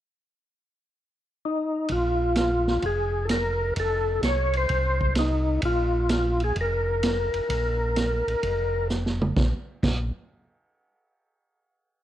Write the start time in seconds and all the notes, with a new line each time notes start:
1.45 D#4
1.89 A#1 F4, kick, ride
2.36 F4, snare, hi-hat pedal, ride
2.67 snare
2.82 F1 G#4, kick, ride
3.25 A4, hi-hat pedal, ride
3.30 A#4, snare
3.76 F1 A4, kick, ride
4.23 C2 C#5, snare, hi-hat pedal, ride
4.53 C5, ride
4.69 C2, kick, ride
5.01 kick
5.15 D#4, snare, hi-hat pedal, ride
5.62 A#1 F4, kick, ride
6.09 F4, snare, hi-hat pedal, ride
6.40 G#4, ride
6.56 F1, kick, ride
6.61 A#4
7.03 snare, hi-hat pedal, ride
7.33 F1, ride
7.49 A#1, kick, ride
7.96 snare, hi-hat pedal, ride
8.28 A#1, ride
8.43 F1, kick, ride
8.90 snare, hi-hat pedal
9.06 snare
9.21 mid tom
9.36 A#1, kick, snare
9.83 A#1, kick, snare, crash